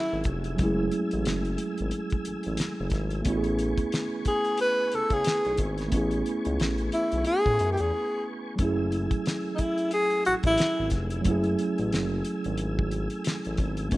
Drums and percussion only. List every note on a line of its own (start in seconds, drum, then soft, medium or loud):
0.24 kick medium
0.24 closed hi-hat medium
0.44 closed hi-hat soft
0.58 kick loud
0.58 closed hi-hat medium
0.91 closed hi-hat medium
1.11 closed hi-hat soft
1.25 snare loud
1.25 closed hi-hat medium
1.45 closed hi-hat soft
1.58 closed hi-hat medium
1.78 closed hi-hat soft
1.91 closed hi-hat medium
2.10 kick loud
2.10 closed hi-hat soft
2.25 closed hi-hat medium
2.43 closed hi-hat medium
2.57 snare loud
2.57 closed hi-hat medium
2.90 kick medium
2.90 snare soft
2.90 closed hi-hat medium
3.10 closed hi-hat soft
3.25 kick loud
3.25 closed hi-hat medium
3.44 closed hi-hat soft
3.59 closed hi-hat medium
3.77 kick medium
3.77 closed hi-hat soft
3.92 snare loud
3.92 closed hi-hat medium
4.25 kick medium
4.25 closed hi-hat medium
4.45 closed hi-hat soft
4.57 closed hi-hat medium
4.92 closed hi-hat medium
5.10 kick medium
5.10 closed hi-hat medium
5.24 snare loud
5.24 closed hi-hat loud
5.45 closed hi-hat soft
5.57 kick medium
5.57 closed hi-hat medium
5.78 snare soft
5.78 closed hi-hat soft
5.92 kick loud
5.92 closed hi-hat medium
6.11 closed hi-hat soft
6.26 closed hi-hat medium
6.45 closed hi-hat soft
6.60 snare loud
6.60 closed hi-hat medium
6.78 closed hi-hat soft
6.92 closed hi-hat medium
7.12 closed hi-hat soft
7.25 closed hi-hat medium
7.46 kick medium
7.59 closed hi-hat medium
7.77 closed hi-hat soft
8.58 kick loud
8.58 closed hi-hat medium
8.92 closed hi-hat medium
9.11 kick loud
9.11 closed hi-hat soft
9.26 snare loud
9.26 closed hi-hat medium
9.58 kick medium
9.58 closed hi-hat medium
9.78 closed hi-hat soft
9.91 closed hi-hat medium
10.10 closed hi-hat soft
10.25 closed hi-hat medium
10.43 kick loud
10.43 closed hi-hat medium
10.57 snare loud
10.57 closed hi-hat medium
10.90 kick medium
10.90 snare soft
10.90 closed hi-hat medium
11.10 closed hi-hat soft
11.24 kick loud
11.24 closed hi-hat medium
11.44 closed hi-hat soft
11.59 closed hi-hat medium
11.78 closed hi-hat soft
11.92 snare loud
11.92 closed hi-hat medium
12.25 closed hi-hat medium
12.44 closed hi-hat soft
12.57 closed hi-hat medium
12.79 kick medium
12.91 closed hi-hat medium
13.10 closed hi-hat medium
13.24 snare loud
13.24 closed hi-hat loud
13.45 closed hi-hat soft
13.57 kick medium
13.57 closed hi-hat medium
13.77 closed hi-hat soft
13.91 kick loud
13.91 closed hi-hat medium